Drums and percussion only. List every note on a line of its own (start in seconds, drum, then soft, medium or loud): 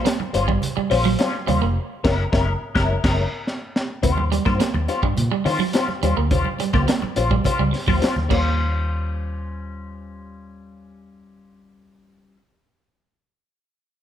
0.06 snare loud
0.06 closed hi-hat loud
0.06 muted conga soft
0.20 high conga medium
0.34 snare soft
0.34 closed hi-hat medium
0.48 kick medium
0.62 closed hi-hat medium
0.62 low conga medium
0.77 muted conga soft
0.91 open hi-hat medium
1.04 high conga medium
1.19 snare loud
1.19 closed hi-hat medium
1.19 muted conga soft
1.35 snare soft
1.48 closed hi-hat medium
1.48 low conga loud
2.04 kick loud
2.04 snare loud
2.04 crash medium
2.33 kick loud
2.33 snare loud
2.76 kick loud
2.76 snare loud
3.04 kick loud
3.04 snare loud
3.04 crash medium
3.47 snare medium
3.76 snare medium
4.03 kick loud
4.03 closed hi-hat medium
4.03 muted conga soft
4.03 low conga medium
4.18 high conga medium
4.32 closed hi-hat medium
4.32 high conga medium
4.46 kick medium
4.46 snare soft
4.46 high conga medium
4.60 snare loud
4.60 closed hi-hat loud
4.74 muted conga soft
4.74 high conga medium
4.88 snare soft
4.88 closed hi-hat medium
5.03 kick medium
5.17 closed hi-hat medium
5.17 low conga medium
5.46 snare soft
5.46 open hi-hat medium
5.59 high conga medium
5.73 snare loud
5.73 closed hi-hat medium
5.73 muted conga soft
5.88 snare soft
5.88 muted conga soft
5.88 high conga medium
6.03 closed hi-hat medium
6.31 kick loud
6.31 closed hi-hat medium
6.31 muted conga soft
6.31 low conga medium
6.45 high conga medium
6.59 closed hi-hat medium
6.59 high conga medium
6.73 kick medium
6.73 snare soft
6.73 high conga medium
6.88 snare loud
6.88 closed hi-hat medium
6.88 muted conga soft
7.02 muted conga soft
7.02 high conga medium
7.16 closed hi-hat medium
7.31 kick medium
7.44 kick medium
7.44 closed hi-hat loud
7.44 low conga medium
7.74 snare soft
7.74 open hi-hat medium
7.87 kick medium
7.87 high conga medium
8.02 snare loud
8.02 closed hi-hat medium
8.02 muted conga soft
8.16 snare soft
8.16 muted conga soft
8.16 high conga medium
8.30 kick medium
8.30 crash medium
8.30 high conga medium